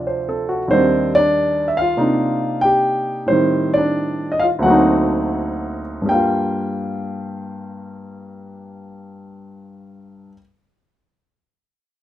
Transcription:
0, 0, Header, 1, 2, 480
1, 0, Start_track
1, 0, Key_signature, -2, "minor"
1, 0, Tempo, 636943
1, 529, Time_signature, 4, 2, 24, 8
1, 1974, Tempo, 672646
1, 3414, Tempo, 719424
1, 4374, Tempo, 743494
1, 8211, End_track
2, 0, Start_track
2, 0, Title_t, "Grand piano"
2, 0, Program_c, 0, 0
2, 0, Note_on_c, 0, 38, 54
2, 0, Note_on_c, 0, 48, 45
2, 0, Note_on_c, 0, 53, 41
2, 0, Note_on_c, 0, 54, 49
2, 0, Note_on_c, 0, 62, 50
2, 0, Note_on_c, 0, 65, 59
2, 0, Note_on_c, 0, 74, 42
2, 51, Note_on_c, 0, 72, 46
2, 145, Note_off_c, 0, 74, 0
2, 216, Note_on_c, 0, 69, 49
2, 357, Note_off_c, 0, 72, 0
2, 368, Note_on_c, 0, 66, 56
2, 463, Note_off_c, 0, 69, 0
2, 510, Note_off_c, 0, 38, 0
2, 512, Note_on_c, 0, 39, 53
2, 522, Note_on_c, 0, 51, 41
2, 525, Note_off_c, 0, 48, 0
2, 531, Note_off_c, 0, 53, 0
2, 533, Note_on_c, 0, 72, 75
2, 534, Note_off_c, 0, 62, 0
2, 534, Note_on_c, 0, 55, 44
2, 538, Note_off_c, 0, 54, 0
2, 545, Note_on_c, 0, 62, 52
2, 550, Note_on_c, 0, 60, 61
2, 552, Note_off_c, 0, 65, 0
2, 618, Note_off_c, 0, 66, 0
2, 837, Note_off_c, 0, 72, 0
2, 846, Note_off_c, 0, 60, 0
2, 866, Note_on_c, 0, 74, 99
2, 874, Note_off_c, 0, 62, 0
2, 886, Note_on_c, 0, 62, 65
2, 1250, Note_off_c, 0, 62, 0
2, 1265, Note_on_c, 0, 76, 60
2, 1280, Note_off_c, 0, 74, 0
2, 1335, Note_on_c, 0, 77, 84
2, 1338, Note_off_c, 0, 76, 0
2, 1365, Note_on_c, 0, 65, 65
2, 1478, Note_off_c, 0, 39, 0
2, 1483, Note_off_c, 0, 51, 0
2, 1484, Note_on_c, 0, 48, 51
2, 1489, Note_off_c, 0, 55, 0
2, 1489, Note_on_c, 0, 58, 42
2, 1489, Note_on_c, 0, 62, 43
2, 1494, Note_on_c, 0, 63, 58
2, 1943, Note_off_c, 0, 77, 0
2, 1958, Note_off_c, 0, 65, 0
2, 1970, Note_on_c, 0, 79, 87
2, 1997, Note_on_c, 0, 67, 64
2, 2413, Note_off_c, 0, 79, 0
2, 2426, Note_off_c, 0, 67, 0
2, 2434, Note_on_c, 0, 45, 44
2, 2442, Note_off_c, 0, 48, 0
2, 2444, Note_on_c, 0, 72, 78
2, 2445, Note_off_c, 0, 58, 0
2, 2445, Note_off_c, 0, 62, 0
2, 2447, Note_off_c, 0, 63, 0
2, 2448, Note_on_c, 0, 55, 42
2, 2459, Note_on_c, 0, 60, 40
2, 2471, Note_on_c, 0, 51, 54
2, 2771, Note_on_c, 0, 74, 81
2, 2783, Note_off_c, 0, 72, 0
2, 2798, Note_on_c, 0, 62, 63
2, 3170, Note_off_c, 0, 62, 0
2, 3185, Note_on_c, 0, 75, 64
2, 3196, Note_off_c, 0, 74, 0
2, 3241, Note_on_c, 0, 77, 81
2, 3260, Note_off_c, 0, 75, 0
2, 3267, Note_on_c, 0, 65, 62
2, 3278, Note_off_c, 0, 77, 0
2, 3302, Note_off_c, 0, 65, 0
2, 3378, Note_on_c, 0, 38, 59
2, 3398, Note_on_c, 0, 57, 54
2, 3406, Note_on_c, 0, 78, 70
2, 3409, Note_off_c, 0, 45, 0
2, 3413, Note_on_c, 0, 54, 56
2, 3416, Note_off_c, 0, 55, 0
2, 3421, Note_off_c, 0, 60, 0
2, 3425, Note_on_c, 0, 66, 62
2, 3427, Note_off_c, 0, 51, 0
2, 3428, Note_on_c, 0, 58, 49
2, 3440, Note_on_c, 0, 60, 55
2, 3455, Note_on_c, 0, 63, 69
2, 4191, Note_off_c, 0, 78, 0
2, 4200, Note_off_c, 0, 66, 0
2, 4335, Note_on_c, 0, 43, 51
2, 4357, Note_off_c, 0, 38, 0
2, 4362, Note_on_c, 0, 55, 53
2, 4367, Note_off_c, 0, 57, 0
2, 4373, Note_off_c, 0, 54, 0
2, 4381, Note_off_c, 0, 58, 0
2, 4382, Note_on_c, 0, 79, 72
2, 4387, Note_off_c, 0, 60, 0
2, 4391, Note_on_c, 0, 58, 51
2, 4394, Note_off_c, 0, 63, 0
2, 4416, Note_on_c, 0, 65, 56
2, 7092, Note_off_c, 0, 43, 0
2, 7112, Note_off_c, 0, 79, 0
2, 7118, Note_off_c, 0, 55, 0
2, 7147, Note_off_c, 0, 58, 0
2, 7172, Note_off_c, 0, 65, 0
2, 8211, End_track
0, 0, End_of_file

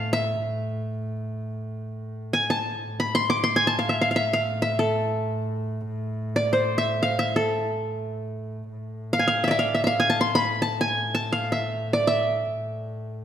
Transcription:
0, 0, Header, 1, 3, 480
1, 0, Start_track
1, 0, Tempo, 500000
1, 12716, End_track
2, 0, Start_track
2, 0, Title_t, "Qanun"
2, 0, Program_c, 0, 107
2, 0, Note_on_c, 0, 77, 61
2, 0, Note_on_c, 0, 81, 75
2, 124, Note_on_c, 0, 76, 72
2, 181, Note_off_c, 0, 77, 0
2, 405, Note_off_c, 0, 81, 0
2, 1440, Note_off_c, 0, 76, 0
2, 2240, Note_on_c, 0, 80, 79
2, 2400, Note_on_c, 0, 81, 74
2, 2458, Note_off_c, 0, 80, 0
2, 2878, Note_on_c, 0, 83, 72
2, 3022, Note_on_c, 0, 84, 85
2, 3080, Note_off_c, 0, 83, 0
2, 3142, Note_off_c, 0, 81, 0
2, 3165, Note_on_c, 0, 86, 81
2, 3295, Note_off_c, 0, 84, 0
2, 3299, Note_on_c, 0, 84, 81
2, 3419, Note_on_c, 0, 80, 83
2, 3524, Note_on_c, 0, 81, 75
2, 3582, Note_off_c, 0, 80, 0
2, 3635, Note_on_c, 0, 77, 62
2, 3737, Note_on_c, 0, 76, 66
2, 3789, Note_off_c, 0, 86, 0
2, 3794, Note_off_c, 0, 77, 0
2, 3854, Note_on_c, 0, 77, 68
2, 3912, Note_off_c, 0, 76, 0
2, 3942, Note_off_c, 0, 77, 0
2, 3945, Note_on_c, 0, 77, 50
2, 3967, Note_off_c, 0, 84, 0
2, 3993, Note_on_c, 0, 76, 71
2, 4050, Note_off_c, 0, 77, 0
2, 4161, Note_on_c, 0, 77, 71
2, 4218, Note_off_c, 0, 76, 0
2, 4266, Note_off_c, 0, 81, 0
2, 4436, Note_on_c, 0, 76, 74
2, 4494, Note_off_c, 0, 77, 0
2, 4598, Note_on_c, 0, 69, 62
2, 5318, Note_off_c, 0, 76, 0
2, 5722, Note_off_c, 0, 69, 0
2, 6106, Note_on_c, 0, 74, 74
2, 6266, Note_on_c, 0, 72, 63
2, 6508, Note_on_c, 0, 76, 71
2, 6745, Note_on_c, 0, 77, 74
2, 6802, Note_off_c, 0, 76, 0
2, 6902, Note_on_c, 0, 76, 72
2, 6959, Note_off_c, 0, 77, 0
2, 7051, Note_off_c, 0, 74, 0
2, 7066, Note_on_c, 0, 69, 65
2, 7280, Note_off_c, 0, 72, 0
2, 7784, Note_off_c, 0, 76, 0
2, 8191, Note_off_c, 0, 69, 0
2, 8765, Note_on_c, 0, 77, 75
2, 8826, Note_on_c, 0, 80, 58
2, 8901, Note_off_c, 0, 77, 0
2, 8905, Note_on_c, 0, 77, 71
2, 9060, Note_on_c, 0, 76, 65
2, 9098, Note_on_c, 0, 74, 58
2, 9118, Note_off_c, 0, 77, 0
2, 9125, Note_off_c, 0, 76, 0
2, 9129, Note_on_c, 0, 76, 72
2, 9206, Note_on_c, 0, 77, 65
2, 9263, Note_off_c, 0, 76, 0
2, 9355, Note_on_c, 0, 76, 61
2, 9413, Note_off_c, 0, 77, 0
2, 9441, Note_off_c, 0, 76, 0
2, 9445, Note_on_c, 0, 76, 54
2, 9473, Note_on_c, 0, 77, 69
2, 9531, Note_off_c, 0, 76, 0
2, 9592, Note_off_c, 0, 80, 0
2, 9596, Note_on_c, 0, 80, 75
2, 9692, Note_on_c, 0, 81, 78
2, 9750, Note_off_c, 0, 80, 0
2, 9799, Note_on_c, 0, 84, 73
2, 9937, Note_on_c, 0, 83, 84
2, 9994, Note_off_c, 0, 84, 0
2, 10043, Note_off_c, 0, 74, 0
2, 10190, Note_off_c, 0, 81, 0
2, 10194, Note_on_c, 0, 81, 76
2, 10325, Note_off_c, 0, 77, 0
2, 10376, Note_on_c, 0, 80, 75
2, 10434, Note_off_c, 0, 81, 0
2, 10629, Note_off_c, 0, 83, 0
2, 10700, Note_on_c, 0, 81, 77
2, 10757, Note_off_c, 0, 80, 0
2, 10872, Note_on_c, 0, 77, 70
2, 11059, Note_on_c, 0, 76, 62
2, 11117, Note_off_c, 0, 77, 0
2, 11442, Note_off_c, 0, 81, 0
2, 11456, Note_on_c, 0, 74, 69
2, 11587, Note_off_c, 0, 76, 0
2, 11591, Note_on_c, 0, 76, 70
2, 12401, Note_off_c, 0, 74, 0
2, 12716, Note_off_c, 0, 76, 0
2, 12716, End_track
3, 0, Start_track
3, 0, Title_t, "Double bass"
3, 0, Program_c, 1, 43
3, 0, Note_on_c, 1, 45, 63
3, 2725, Note_off_c, 1, 45, 0
3, 2731, Note_on_c, 1, 45, 65
3, 8353, Note_off_c, 1, 45, 0
3, 8370, Note_on_c, 1, 45, 58
3, 12716, Note_off_c, 1, 45, 0
3, 12716, End_track
0, 0, End_of_file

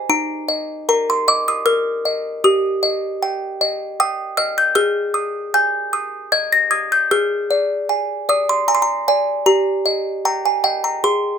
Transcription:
0, 0, Header, 1, 2, 480
1, 0, Start_track
1, 0, Tempo, 778210
1, 65, Time_signature, 3, 2, 24, 8
1, 4384, Tempo, 790514
1, 6981, End_track
2, 0, Start_track
2, 0, Title_t, "Music box"
2, 0, Program_c, 0, 10
2, 58, Note_on_c, 0, 63, 85
2, 59, Note_on_c, 0, 82, 116
2, 299, Note_on_c, 0, 75, 59
2, 526, Note_off_c, 0, 82, 0
2, 547, Note_on_c, 0, 70, 59
2, 548, Note_on_c, 0, 82, 106
2, 668, Note_off_c, 0, 82, 0
2, 677, Note_on_c, 0, 84, 103
2, 688, Note_off_c, 0, 75, 0
2, 789, Note_on_c, 0, 75, 65
2, 791, Note_on_c, 0, 86, 116
2, 792, Note_off_c, 0, 84, 0
2, 909, Note_off_c, 0, 86, 0
2, 913, Note_on_c, 0, 87, 121
2, 931, Note_off_c, 0, 70, 0
2, 1021, Note_on_c, 0, 89, 127
2, 1022, Note_on_c, 0, 70, 67
2, 1030, Note_off_c, 0, 87, 0
2, 1172, Note_off_c, 0, 75, 0
2, 1267, Note_on_c, 0, 75, 63
2, 1408, Note_off_c, 0, 70, 0
2, 1479, Note_off_c, 0, 63, 0
2, 1485, Note_off_c, 0, 89, 0
2, 1506, Note_on_c, 0, 67, 84
2, 1507, Note_off_c, 0, 75, 0
2, 1507, Note_on_c, 0, 87, 109
2, 1744, Note_on_c, 0, 75, 65
2, 1989, Note_on_c, 0, 79, 67
2, 2130, Note_off_c, 0, 75, 0
2, 2202, Note_off_c, 0, 87, 0
2, 2227, Note_on_c, 0, 75, 66
2, 2371, Note_off_c, 0, 79, 0
2, 2467, Note_on_c, 0, 87, 123
2, 2468, Note_on_c, 0, 79, 70
2, 2609, Note_off_c, 0, 75, 0
2, 2694, Note_off_c, 0, 87, 0
2, 2697, Note_on_c, 0, 89, 126
2, 2700, Note_on_c, 0, 75, 67
2, 2819, Note_off_c, 0, 89, 0
2, 2824, Note_on_c, 0, 91, 118
2, 2847, Note_off_c, 0, 79, 0
2, 2916, Note_off_c, 0, 67, 0
2, 2931, Note_on_c, 0, 89, 127
2, 2934, Note_on_c, 0, 68, 96
2, 2940, Note_off_c, 0, 75, 0
2, 2942, Note_off_c, 0, 91, 0
2, 3171, Note_on_c, 0, 87, 72
2, 3396, Note_off_c, 0, 89, 0
2, 3418, Note_on_c, 0, 80, 66
2, 3418, Note_on_c, 0, 91, 127
2, 3560, Note_off_c, 0, 87, 0
2, 3658, Note_on_c, 0, 87, 71
2, 3803, Note_off_c, 0, 80, 0
2, 3880, Note_off_c, 0, 91, 0
2, 3898, Note_on_c, 0, 92, 127
2, 3899, Note_on_c, 0, 75, 75
2, 4019, Note_off_c, 0, 92, 0
2, 4025, Note_on_c, 0, 94, 120
2, 4043, Note_off_c, 0, 87, 0
2, 4137, Note_on_c, 0, 87, 71
2, 4137, Note_on_c, 0, 92, 115
2, 4142, Note_off_c, 0, 94, 0
2, 4259, Note_off_c, 0, 92, 0
2, 4268, Note_on_c, 0, 91, 125
2, 4284, Note_off_c, 0, 75, 0
2, 4353, Note_off_c, 0, 68, 0
2, 4380, Note_off_c, 0, 87, 0
2, 4386, Note_off_c, 0, 91, 0
2, 4387, Note_on_c, 0, 68, 92
2, 4387, Note_on_c, 0, 89, 127
2, 4626, Note_on_c, 0, 74, 62
2, 4861, Note_on_c, 0, 80, 62
2, 5005, Note_off_c, 0, 74, 0
2, 5076, Note_off_c, 0, 89, 0
2, 5101, Note_on_c, 0, 74, 66
2, 5104, Note_on_c, 0, 87, 113
2, 5220, Note_off_c, 0, 87, 0
2, 5226, Note_on_c, 0, 84, 119
2, 5241, Note_off_c, 0, 80, 0
2, 5339, Note_on_c, 0, 82, 113
2, 5340, Note_off_c, 0, 84, 0
2, 5341, Note_on_c, 0, 80, 68
2, 5379, Note_on_c, 0, 84, 97
2, 5380, Note_off_c, 0, 82, 0
2, 5421, Note_off_c, 0, 84, 0
2, 5425, Note_on_c, 0, 82, 112
2, 5480, Note_off_c, 0, 74, 0
2, 5570, Note_off_c, 0, 82, 0
2, 5575, Note_off_c, 0, 80, 0
2, 5582, Note_on_c, 0, 80, 106
2, 5583, Note_on_c, 0, 74, 61
2, 5790, Note_off_c, 0, 68, 0
2, 5807, Note_off_c, 0, 80, 0
2, 5813, Note_on_c, 0, 67, 81
2, 5814, Note_on_c, 0, 82, 121
2, 5817, Note_off_c, 0, 74, 0
2, 6053, Note_on_c, 0, 75, 57
2, 6271, Note_off_c, 0, 82, 0
2, 6293, Note_on_c, 0, 79, 58
2, 6294, Note_on_c, 0, 82, 109
2, 6412, Note_off_c, 0, 82, 0
2, 6417, Note_on_c, 0, 80, 93
2, 6435, Note_off_c, 0, 75, 0
2, 6521, Note_off_c, 0, 79, 0
2, 6528, Note_on_c, 0, 75, 55
2, 6528, Note_on_c, 0, 79, 105
2, 6534, Note_off_c, 0, 80, 0
2, 6651, Note_off_c, 0, 79, 0
2, 6651, Note_on_c, 0, 82, 100
2, 6751, Note_off_c, 0, 67, 0
2, 6771, Note_on_c, 0, 68, 73
2, 6771, Note_on_c, 0, 84, 108
2, 6774, Note_off_c, 0, 75, 0
2, 6774, Note_off_c, 0, 82, 0
2, 6981, Note_off_c, 0, 68, 0
2, 6981, Note_off_c, 0, 84, 0
2, 6981, End_track
0, 0, End_of_file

